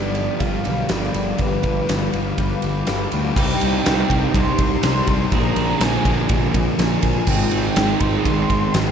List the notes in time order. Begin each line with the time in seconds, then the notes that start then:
Already playing: G1 G2 D3 F3 G3 B3 D4 G4 D5 F5 B5 D6
0.03 tambourine
0.15 ride, tambourine
0.28 tambourine
0.39 G1 F5, kick, ride, tambourine
0.53 tambourine
0.64 B1 D3 G3, ride, tambourine
0.89 G1 G2 D3 G3 D5, snare, ride, tambourine
1.03 snare
1.14 G1 D3 G3, ride, tambourine
1.28 tambourine
1.38 G1 G2 D3 G3 B4, kick, ride, tambourine
1.53 tambourine
1.62 G1 D3 G3, kick, ride, tambourine
1.87 G1 G2 D3 G3, snare, ride, tambourine
2.02 tambourine
2.13 G1, ride, tambourine
2.27 tambourine
2.38 G1 B4, kick, ride, tambourine
2.51 tambourine
2.62 G1 D3 G3, ride, tambourine
2.76 tambourine
2.87 G1 G2 D3 G3, snare, ride, tambourine
2.99 tambourine
3.11 D2 D3 G3, ride, tambourine
3.24 tambourine
3.35 C2 C3 G3 C4 D#4 G4 C5 G5 A#5, kick, crash
3.39 G4
3.61 C2, ride
3.83 C3 G3 C4, snare, ride
3.87 C2
4.08 C2 G3 C4, kick, ride
4.32 C2 C3 G3 C4 C6, kick, ride
4.58 C2, kick, ride
4.81 C2 C3 G3 C4, snare, ride
5.07 C2, kick, ride
5.30 A#1 A#2 D3 F3 A#3 F4 A#4 G#5 A#5, kick, ride
5.34 A#3 D4 G#4
5.56 A#1, ride
5.78 A#1 A#2 F3 A#3 G#5, snare, ride
6.05 A#1 F3 A#3, kick, ride
6.29 A#1 A#2 F3 A#3, kick, ride
6.54 A#1, kick, ride
6.78 A#1 A#2 F3 A#3, snare, ride
7.03 A#1, kick, ride
7.27 G#1 G#2 D#3 G#3 C4 D#4 G#4 C5 G5, kick, crash
7.31 D#4 G#4
7.51 G#1, ride
7.75 G#1 G#2 D#3 G#3, snare, ride
7.99 G#1 D#3 G#3 C6, kick, ride
8.23 G#1 G#2 D#3 G#3, kick, ride
8.50 G#1, kick, ride
8.74 G#1 G#2 D#3 G#3, snare, ride